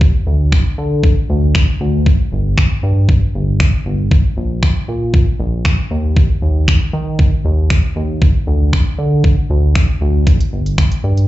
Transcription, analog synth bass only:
0, 0, Header, 1, 2, 480
1, 0, Start_track
1, 0, Tempo, 512821
1, 11, Time_signature, 4, 2, 24, 8
1, 10555, End_track
2, 0, Start_track
2, 0, Title_t, "Analog synth bass"
2, 0, Program_c, 0, 38
2, 0, Note_on_c, 0, 39, 99
2, 120, Note_off_c, 0, 39, 0
2, 250, Note_on_c, 0, 38, 88
2, 600, Note_off_c, 0, 38, 0
2, 731, Note_on_c, 0, 50, 88
2, 1080, Note_off_c, 0, 50, 0
2, 1211, Note_on_c, 0, 38, 95
2, 1560, Note_off_c, 0, 38, 0
2, 1690, Note_on_c, 0, 38, 101
2, 2040, Note_off_c, 0, 38, 0
2, 2171, Note_on_c, 0, 31, 87
2, 2520, Note_off_c, 0, 31, 0
2, 2650, Note_on_c, 0, 43, 91
2, 2999, Note_off_c, 0, 43, 0
2, 3130, Note_on_c, 0, 31, 100
2, 3480, Note_off_c, 0, 31, 0
2, 3611, Note_on_c, 0, 31, 97
2, 3960, Note_off_c, 0, 31, 0
2, 4090, Note_on_c, 0, 34, 91
2, 4440, Note_off_c, 0, 34, 0
2, 4570, Note_on_c, 0, 46, 86
2, 4920, Note_off_c, 0, 46, 0
2, 5050, Note_on_c, 0, 34, 100
2, 5400, Note_off_c, 0, 34, 0
2, 5531, Note_on_c, 0, 39, 104
2, 5880, Note_off_c, 0, 39, 0
2, 6011, Note_on_c, 0, 39, 86
2, 6360, Note_off_c, 0, 39, 0
2, 6490, Note_on_c, 0, 51, 88
2, 6840, Note_off_c, 0, 51, 0
2, 6970, Note_on_c, 0, 39, 98
2, 7320, Note_off_c, 0, 39, 0
2, 7451, Note_on_c, 0, 39, 100
2, 7800, Note_off_c, 0, 39, 0
2, 7930, Note_on_c, 0, 38, 88
2, 8280, Note_off_c, 0, 38, 0
2, 8410, Note_on_c, 0, 50, 88
2, 8760, Note_off_c, 0, 50, 0
2, 8891, Note_on_c, 0, 38, 100
2, 9241, Note_off_c, 0, 38, 0
2, 9370, Note_on_c, 0, 38, 98
2, 9720, Note_off_c, 0, 38, 0
2, 9851, Note_on_c, 0, 31, 89
2, 10200, Note_off_c, 0, 31, 0
2, 10332, Note_on_c, 0, 43, 86
2, 10555, Note_off_c, 0, 43, 0
2, 10555, End_track
0, 0, End_of_file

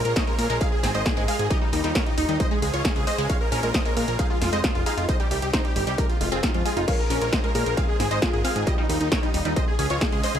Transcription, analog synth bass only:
0, 0, Header, 1, 2, 480
1, 0, Start_track
1, 0, Tempo, 447761
1, 1613, Time_signature, 4, 2, 24, 8
1, 11141, End_track
2, 0, Start_track
2, 0, Title_t, "Analog synth bass"
2, 0, Program_c, 0, 38
2, 55, Note_on_c, 0, 34, 81
2, 155, Note_off_c, 0, 34, 0
2, 413, Note_on_c, 0, 46, 98
2, 514, Note_off_c, 0, 46, 0
2, 534, Note_on_c, 0, 34, 85
2, 634, Note_off_c, 0, 34, 0
2, 894, Note_on_c, 0, 32, 91
2, 995, Note_off_c, 0, 32, 0
2, 1014, Note_on_c, 0, 32, 86
2, 1115, Note_off_c, 0, 32, 0
2, 1256, Note_on_c, 0, 32, 83
2, 1355, Note_off_c, 0, 32, 0
2, 1494, Note_on_c, 0, 32, 84
2, 1595, Note_off_c, 0, 32, 0
2, 1854, Note_on_c, 0, 39, 92
2, 1954, Note_off_c, 0, 39, 0
2, 1974, Note_on_c, 0, 39, 82
2, 2075, Note_off_c, 0, 39, 0
2, 2333, Note_on_c, 0, 27, 101
2, 2434, Note_off_c, 0, 27, 0
2, 2453, Note_on_c, 0, 39, 82
2, 2554, Note_off_c, 0, 39, 0
2, 2813, Note_on_c, 0, 37, 98
2, 2914, Note_off_c, 0, 37, 0
2, 2934, Note_on_c, 0, 37, 82
2, 3034, Note_off_c, 0, 37, 0
2, 3173, Note_on_c, 0, 37, 78
2, 3274, Note_off_c, 0, 37, 0
2, 3414, Note_on_c, 0, 37, 83
2, 3515, Note_off_c, 0, 37, 0
2, 3773, Note_on_c, 0, 34, 91
2, 3874, Note_off_c, 0, 34, 0
2, 3892, Note_on_c, 0, 34, 85
2, 3994, Note_off_c, 0, 34, 0
2, 4252, Note_on_c, 0, 46, 99
2, 4354, Note_off_c, 0, 46, 0
2, 4373, Note_on_c, 0, 34, 83
2, 4474, Note_off_c, 0, 34, 0
2, 4732, Note_on_c, 0, 29, 96
2, 4834, Note_off_c, 0, 29, 0
2, 4853, Note_on_c, 0, 29, 85
2, 4954, Note_off_c, 0, 29, 0
2, 5093, Note_on_c, 0, 29, 78
2, 5194, Note_off_c, 0, 29, 0
2, 5333, Note_on_c, 0, 29, 83
2, 5434, Note_off_c, 0, 29, 0
2, 5694, Note_on_c, 0, 36, 92
2, 5795, Note_off_c, 0, 36, 0
2, 5815, Note_on_c, 0, 36, 85
2, 5915, Note_off_c, 0, 36, 0
2, 6175, Note_on_c, 0, 31, 102
2, 6275, Note_off_c, 0, 31, 0
2, 6294, Note_on_c, 0, 36, 83
2, 6395, Note_off_c, 0, 36, 0
2, 6654, Note_on_c, 0, 29, 94
2, 6755, Note_off_c, 0, 29, 0
2, 6776, Note_on_c, 0, 29, 84
2, 6875, Note_off_c, 0, 29, 0
2, 7015, Note_on_c, 0, 41, 83
2, 7115, Note_off_c, 0, 41, 0
2, 7255, Note_on_c, 0, 29, 82
2, 7355, Note_off_c, 0, 29, 0
2, 7615, Note_on_c, 0, 34, 96
2, 7715, Note_off_c, 0, 34, 0
2, 7734, Note_on_c, 0, 34, 85
2, 7835, Note_off_c, 0, 34, 0
2, 8095, Note_on_c, 0, 46, 100
2, 8195, Note_off_c, 0, 46, 0
2, 8216, Note_on_c, 0, 34, 87
2, 8316, Note_off_c, 0, 34, 0
2, 8576, Note_on_c, 0, 32, 96
2, 8675, Note_off_c, 0, 32, 0
2, 8696, Note_on_c, 0, 32, 80
2, 8796, Note_off_c, 0, 32, 0
2, 8936, Note_on_c, 0, 32, 81
2, 9035, Note_off_c, 0, 32, 0
2, 9176, Note_on_c, 0, 32, 81
2, 9275, Note_off_c, 0, 32, 0
2, 9534, Note_on_c, 0, 39, 91
2, 9635, Note_off_c, 0, 39, 0
2, 9655, Note_on_c, 0, 39, 85
2, 9755, Note_off_c, 0, 39, 0
2, 10014, Note_on_c, 0, 27, 95
2, 10114, Note_off_c, 0, 27, 0
2, 10135, Note_on_c, 0, 39, 86
2, 10235, Note_off_c, 0, 39, 0
2, 10494, Note_on_c, 0, 37, 100
2, 10595, Note_off_c, 0, 37, 0
2, 10615, Note_on_c, 0, 37, 84
2, 10715, Note_off_c, 0, 37, 0
2, 10853, Note_on_c, 0, 37, 76
2, 10954, Note_off_c, 0, 37, 0
2, 11095, Note_on_c, 0, 37, 85
2, 11141, Note_off_c, 0, 37, 0
2, 11141, End_track
0, 0, End_of_file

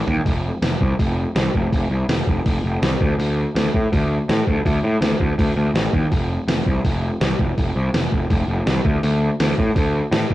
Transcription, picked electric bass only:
0, 0, Header, 1, 2, 480
1, 0, Start_track
1, 0, Tempo, 365408
1, 342, Time_signature, 4, 2, 24, 8
1, 13585, End_track
2, 0, Start_track
2, 0, Title_t, "Picked electric bass"
2, 0, Program_c, 0, 34
2, 96, Note_on_c, 0, 39, 89
2, 263, Note_off_c, 0, 39, 0
2, 335, Note_on_c, 0, 29, 81
2, 668, Note_off_c, 0, 29, 0
2, 818, Note_on_c, 0, 29, 91
2, 985, Note_off_c, 0, 29, 0
2, 1060, Note_on_c, 0, 36, 79
2, 1226, Note_off_c, 0, 36, 0
2, 1303, Note_on_c, 0, 29, 84
2, 1633, Note_off_c, 0, 29, 0
2, 1782, Note_on_c, 0, 36, 92
2, 1948, Note_off_c, 0, 36, 0
2, 2025, Note_on_c, 0, 29, 101
2, 2190, Note_off_c, 0, 29, 0
2, 2265, Note_on_c, 0, 29, 86
2, 2430, Note_off_c, 0, 29, 0
2, 2495, Note_on_c, 0, 36, 77
2, 2664, Note_off_c, 0, 36, 0
2, 2741, Note_on_c, 0, 29, 89
2, 2908, Note_off_c, 0, 29, 0
2, 2983, Note_on_c, 0, 29, 75
2, 3149, Note_off_c, 0, 29, 0
2, 3228, Note_on_c, 0, 29, 77
2, 3393, Note_off_c, 0, 29, 0
2, 3467, Note_on_c, 0, 29, 91
2, 3632, Note_off_c, 0, 29, 0
2, 3706, Note_on_c, 0, 36, 93
2, 3872, Note_off_c, 0, 36, 0
2, 3951, Note_on_c, 0, 38, 106
2, 4115, Note_off_c, 0, 38, 0
2, 4186, Note_on_c, 0, 38, 86
2, 4517, Note_off_c, 0, 38, 0
2, 4669, Note_on_c, 0, 38, 91
2, 4834, Note_off_c, 0, 38, 0
2, 4916, Note_on_c, 0, 45, 73
2, 5078, Note_off_c, 0, 45, 0
2, 5152, Note_on_c, 0, 38, 87
2, 5481, Note_off_c, 0, 38, 0
2, 5637, Note_on_c, 0, 45, 97
2, 5799, Note_off_c, 0, 45, 0
2, 5874, Note_on_c, 0, 38, 88
2, 6037, Note_off_c, 0, 38, 0
2, 6112, Note_on_c, 0, 38, 82
2, 6276, Note_off_c, 0, 38, 0
2, 6350, Note_on_c, 0, 45, 85
2, 6515, Note_off_c, 0, 45, 0
2, 6582, Note_on_c, 0, 38, 93
2, 6749, Note_off_c, 0, 38, 0
2, 6829, Note_on_c, 0, 38, 81
2, 6994, Note_off_c, 0, 38, 0
2, 7068, Note_on_c, 0, 38, 84
2, 7234, Note_off_c, 0, 38, 0
2, 7306, Note_on_c, 0, 38, 85
2, 7472, Note_off_c, 0, 38, 0
2, 7541, Note_on_c, 0, 33, 95
2, 7709, Note_off_c, 0, 33, 0
2, 7793, Note_on_c, 0, 39, 99
2, 7956, Note_off_c, 0, 39, 0
2, 8037, Note_on_c, 0, 29, 87
2, 8364, Note_off_c, 0, 29, 0
2, 8508, Note_on_c, 0, 29, 84
2, 8673, Note_off_c, 0, 29, 0
2, 8752, Note_on_c, 0, 36, 75
2, 8916, Note_off_c, 0, 36, 0
2, 8990, Note_on_c, 0, 29, 86
2, 9319, Note_off_c, 0, 29, 0
2, 9475, Note_on_c, 0, 36, 85
2, 9637, Note_off_c, 0, 36, 0
2, 9710, Note_on_c, 0, 29, 96
2, 9875, Note_off_c, 0, 29, 0
2, 9953, Note_on_c, 0, 29, 88
2, 10116, Note_off_c, 0, 29, 0
2, 10193, Note_on_c, 0, 36, 90
2, 10356, Note_off_c, 0, 36, 0
2, 10430, Note_on_c, 0, 29, 92
2, 10594, Note_off_c, 0, 29, 0
2, 10669, Note_on_c, 0, 29, 81
2, 10833, Note_off_c, 0, 29, 0
2, 10902, Note_on_c, 0, 29, 87
2, 11069, Note_off_c, 0, 29, 0
2, 11140, Note_on_c, 0, 29, 88
2, 11307, Note_off_c, 0, 29, 0
2, 11377, Note_on_c, 0, 36, 90
2, 11545, Note_off_c, 0, 36, 0
2, 11623, Note_on_c, 0, 38, 102
2, 11789, Note_off_c, 0, 38, 0
2, 11863, Note_on_c, 0, 38, 94
2, 12193, Note_off_c, 0, 38, 0
2, 12349, Note_on_c, 0, 38, 93
2, 12512, Note_off_c, 0, 38, 0
2, 12584, Note_on_c, 0, 45, 73
2, 12749, Note_off_c, 0, 45, 0
2, 12816, Note_on_c, 0, 38, 81
2, 13148, Note_off_c, 0, 38, 0
2, 13287, Note_on_c, 0, 45, 103
2, 13457, Note_off_c, 0, 45, 0
2, 13535, Note_on_c, 0, 38, 91
2, 13585, Note_off_c, 0, 38, 0
2, 13585, End_track
0, 0, End_of_file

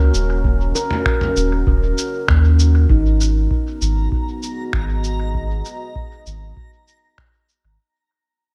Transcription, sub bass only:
0, 0, Header, 1, 2, 480
1, 0, Start_track
1, 0, Key_signature, 5, "minor"
1, 0, Tempo, 612245
1, 348, Time_signature, 4, 2, 24, 8
1, 6695, End_track
2, 0, Start_track
2, 0, Title_t, "Sub bass"
2, 0, Program_c, 0, 38
2, 0, Note_on_c, 0, 37, 98
2, 87, Note_off_c, 0, 37, 0
2, 111, Note_on_c, 0, 27, 91
2, 567, Note_off_c, 0, 27, 0
2, 1070, Note_on_c, 0, 27, 81
2, 1280, Note_off_c, 0, 27, 0
2, 1308, Note_on_c, 0, 27, 86
2, 1519, Note_off_c, 0, 27, 0
2, 1790, Note_on_c, 0, 39, 91
2, 2246, Note_off_c, 0, 39, 0
2, 2272, Note_on_c, 0, 32, 99
2, 2727, Note_off_c, 0, 32, 0
2, 2990, Note_on_c, 0, 32, 80
2, 3200, Note_off_c, 0, 32, 0
2, 3711, Note_on_c, 0, 32, 98
2, 4407, Note_off_c, 0, 32, 0
2, 4911, Note_on_c, 0, 32, 76
2, 5121, Note_off_c, 0, 32, 0
2, 5992, Note_on_c, 0, 32, 84
2, 6095, Note_off_c, 0, 32, 0
2, 6695, End_track
0, 0, End_of_file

